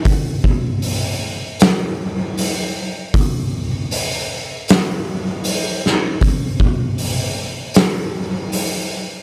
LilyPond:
\new DrumStaff \with { instrumentName = "Drums" } \drummode { \time 4/4 \tempo 4 = 78 <hho bd>8 bd8 hho4 <hho sn>4 hho4 | <hho bd>4 hho4 <hho sn>4 hho8 sn8 | <hho bd>8 bd8 hho4 <hho sn>4 hho4 | }